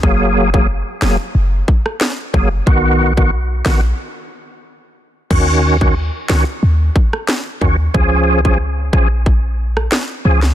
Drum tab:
CC |----------------|----------------|x---------------|----------------|
SD |------o----ro---|------o---------|------o----ro---|-----------ro--o|
BD |o--o------o---o-|o--o--o---------|o--o------o---o-|o--o--o-o-------|